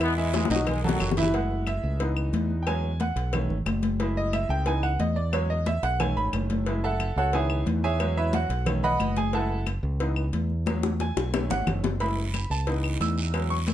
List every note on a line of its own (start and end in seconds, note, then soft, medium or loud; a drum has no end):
0.00 0.44 E2 medium
0.00 0.11 E3 medium
0.00 0.15 G#3 medium
0.00 0.16 B3 loud
0.00 0.11 E4 medium
0.00 0.11 E5 medium
0.00 cowbell loud
0.00 high conga soft
0.00 long guiro medium
0.00 claves medium
0.16 0.45 E3 medium
0.16 0.33 E3 medium
0.16 0.32 G#3 medium
0.16 0.45 E4 medium
0.16 0.45 E5 medium
0.16 high conga soft
0.34 0.50 E3 medium
0.34 0.49 G#3 medium
0.34 cowbell medium
0.34 high bongo loud
0.34 high conga medium
0.34 short guiro medium
0.45 high bongo loud
0.50 0.96 B1 medium
0.50 0.78 D#3 medium
0.50 0.67 D#3 medium
0.50 0.66 F#3 medium
0.50 0.78 D#4 medium
0.50 0.78 D#5 medium
0.50 cowbell medium
0.50 high conga medium
0.50 short guiro medium
0.56 high bongo medium
0.67 0.84 D#3 medium
0.67 0.84 G#3 medium
0.67 cowbell loud
0.67 low conga medium
0.67 long guiro medium
0.67 claves medium
0.84 1.16 D#3 medium
0.84 1.11 F#3 medium
0.84 1.15 F#3 medium
0.84 1.12 F#4 medium
0.84 1.11 A4 medium
0.84 low conga medium
0.89 low bongo loud
1.00 1.78 F#1 medium
1.00 cowbell medium
1.00 low conga medium
1.00 short guiro medium
1.00 claves medium
1.11 low bongo loud
1.17 1.31 E3 medium
1.17 1.31 E4 loud
1.17 1.31 E5 loud
1.17 cowbell medium
1.17 low conga loud
1.17 short guiro medium
1.23 low bongo medium
1.34 1.97 G#3 medium
1.34 1.97 A3 medium
1.34 1.98 E4 medium
1.34 1.65 F#5 medium
1.34 cowbell loud
1.51 high conga soft
1.67 1.98 E5 medium
1.67 cowbell medium
1.67 high conga medium
1.67 claves medium
1.83 2.30 C#2 medium
1.83 high conga soft
2.00 2.63 E3 medium
2.00 2.64 B3 medium
2.00 2.64 D#4 medium
2.00 cowbell loud
2.00 high conga soft
2.17 high conga soft
2.17 claves medium
2.33 3.11 E2 medium
2.33 cowbell medium
2.33 high conga medium
2.50 high conga soft
2.63 2.65 G5 medium
2.67 2.89 F#3 medium
2.67 2.89 G#3 medium
2.67 2.90 C#4 medium
2.67 2.98 G#5 medium
2.67 cowbell loud
2.67 high conga soft
2.67 claves medium
2.84 high conga soft
3.00 3.31 F#5 medium
3.00 cowbell medium
3.00 high conga medium
3.16 3.47 B1 medium
3.16 cowbell medium
3.33 3.55 D#3 medium
3.33 3.56 A3 soft
3.33 3.56 C#4 medium
3.33 cowbell loud
3.33 high conga soft
3.33 low conga medium
3.33 claves medium
3.49 3.65 G#1 medium
3.49 high conga soft
3.49 low conga medium
3.66 4.44 F#1 loud
3.66 cowbell medium
3.66 high conga medium
3.66 claves medium
3.83 cowbell medium
3.83 high conga medium
4.00 4.63 G#3 medium
4.00 4.63 A3 medium
4.00 4.64 E4 medium
4.00 cowbell loud
4.00 high conga soft
4.16 4.33 D#5 medium
4.16 high conga soft
4.33 4.49 E5 medium
4.33 cowbell medium
4.33 high conga medium
4.33 claves medium
4.49 4.96 C#2 medium
4.49 4.66 G5 medium
4.49 high conga soft
4.66 4.89 E3 medium
4.66 4.89 B3 medium
4.66 4.89 D#4 medium
4.66 4.83 G#5 medium
4.66 cowbell loud
4.66 high conga soft
4.83 4.99 F#5 medium
4.83 high conga soft
4.83 claves medium
4.99 5.77 E2 medium
4.99 5.16 D#5 medium
4.99 cowbell medium
4.99 high conga medium
5.16 5.33 D5 medium
5.16 high conga soft
5.32 5.55 F#3 medium
5.32 5.55 G#3 medium
5.32 5.56 C#4 medium
5.32 5.50 C#5 medium
5.32 cowbell loud
5.32 high conga soft
5.32 claves medium
5.50 5.66 D#5 medium
5.50 high conga soft
5.66 5.83 E5 medium
5.66 cowbell medium
5.66 high conga loud
5.83 6.14 B1 medium
5.83 6.00 F#5 loud
5.83 cowbell medium
6.00 6.63 D#3 medium
6.00 6.64 A3 medium
6.00 6.64 C#4 medium
6.00 6.16 G#5 medium
6.00 cowbell loud
6.00 high conga soft
6.00 low conga medium
6.00 claves medium
6.17 6.32 G#1 medium
6.17 6.27 B5 loud
6.17 high conga soft
6.33 7.11 F#1 medium
6.33 cowbell medium
6.33 high conga medium
6.33 claves medium
6.50 cowbell medium
6.50 high conga medium
6.66 6.89 G#3 medium
6.66 6.89 A3 medium
6.66 6.90 E4 medium
6.66 cowbell loud
6.84 7.15 A4 medium
6.84 7.15 E5 medium
6.84 7.15 F#5 medium
6.84 7.15 A5 medium
6.84 high conga soft
7.00 cowbell medium
7.00 high conga medium
7.00 claves medium
7.16 7.63 C#2 medium
7.16 7.34 F#4 medium
7.16 7.33 A4 medium
7.16 7.33 C#5 medium
7.16 7.33 F#5 medium
7.16 high conga soft
7.33 7.98 D#3 medium
7.33 7.97 E3 medium
7.33 7.97 B3 medium
7.33 7.65 G#4 medium
7.33 7.65 C#5 medium
7.33 7.65 E5 medium
7.33 7.65 G#5 medium
7.33 cowbell loud
7.33 high conga soft
7.50 high conga soft
7.50 claves medium
7.66 8.44 E2 loud
7.66 cowbell medium
7.66 high conga medium
7.83 8.15 G#4 medium
7.83 8.15 C#5 medium
7.83 8.15 E5 medium
7.83 8.15 G#5 loud
7.83 high conga soft
8.00 8.48 F#3 medium
8.00 8.48 G#3 medium
8.00 8.49 C#4 medium
8.00 cowbell loud
8.00 high conga soft
8.00 claves medium
8.17 8.34 E4 medium
8.17 8.34 B4 medium
8.17 8.34 C#5 medium
8.17 8.33 E5 medium
8.17 high conga soft
8.33 8.65 F#4 medium
8.33 8.65 F#5 medium
8.33 cowbell medium
8.33 high conga loud
8.49 8.96 B1 medium
8.49 cowbell medium
8.66 8.89 D#3 medium
8.66 8.89 A3 medium
8.66 8.90 C#4 medium
8.66 cowbell loud
8.66 high conga soft
8.66 low conga medium
8.66 claves medium
8.83 9.15 B4 medium
8.83 9.15 D#5 medium
8.83 9.15 F#5 medium
8.83 9.15 B5 loud
8.83 high conga soft
8.83 low conga medium
9.00 9.78 F#1 loud
9.00 cowbell medium
9.00 high conga medium
9.00 claves medium
9.16 9.33 G#4 medium
9.16 9.33 G#5 medium
9.16 cowbell medium
9.16 high conga medium
9.33 9.56 G#3 medium
9.33 9.56 A3 medium
9.33 9.56 E4 medium
9.33 9.65 A4 medium
9.33 9.65 E5 medium
9.33 9.65 F#5 medium
9.33 9.65 A5 medium
9.33 cowbell loud
9.33 high conga soft
9.50 high conga soft
9.66 cowbell medium
9.66 high conga medium
9.66 claves medium
9.83 10.30 C#2 loud
9.83 high conga soft
10.00 10.23 E3 medium
10.00 10.23 B3 medium
10.00 10.23 D#4 medium
10.00 cowbell loud
10.00 high conga soft
10.16 high conga soft
10.16 claves medium
10.33 11.11 E2 loud
10.33 cowbell medium
10.33 high conga medium
10.50 high conga soft
10.66 10.89 F#3 medium
10.66 10.90 G#3 medium
10.66 10.90 C#4 medium
10.66 cowbell loud
10.66 high bongo medium
10.66 high conga medium
10.66 claves medium
10.83 high bongo medium
10.83 high conga medium
11.00 11.47 G#5 medium
11.00 cowbell medium
11.00 high bongo medium
11.00 high conga medium
11.16 11.48 B1 medium
11.16 cowbell medium
11.16 high bongo medium
11.33 11.81 D#3 medium
11.33 11.81 A3 soft
11.33 11.82 C#4 medium
11.33 cowbell loud
11.33 low bongo loud
11.33 claves medium
11.50 11.66 G#1 medium
11.50 11.67 F#5 medium
11.50 low bongo medium
11.50 low conga medium
11.67 12.45 F#1 medium
11.67 cowbell medium
11.67 low bongo medium
11.67 low conga medium
11.67 claves medium
11.84 cowbell medium
11.84 low bongo loud
11.84 low conga medium
12.00 12.23 G#3 medium
12.00 12.23 A3 medium
12.00 12.23 E4 medium
12.00 12.47 B5 loud
12.00 cowbell loud
12.00 high conga soft
12.00 long guiro medium
12.18 high conga soft
12.34 cowbell medium
12.34 high conga medium
12.34 short guiro medium
12.34 claves medium
12.50 12.97 C#2 medium
12.50 12.67 A5 medium
12.50 high conga soft
12.50 short guiro medium
12.67 13.30 E3 medium
12.67 13.31 B3 soft
12.67 13.31 D#4 medium
12.67 cowbell loud
12.67 high conga soft
12.67 long guiro medium
12.84 high conga soft
12.84 claves medium
13.00 13.74 E2 medium
13.00 13.47 E6 loud
13.00 cowbell medium
13.00 high conga medium
13.00 short guiro medium
13.18 high conga soft
13.18 short guiro medium
13.34 13.56 F#3 medium
13.34 13.56 G#3 medium
13.34 13.57 C#4 medium
13.34 cowbell loud
13.34 high conga soft
13.34 long guiro medium
13.34 claves medium
13.50 13.67 C#6 medium
13.50 high conga soft
13.67 cowbell medium
13.67 high conga loud
13.67 short guiro medium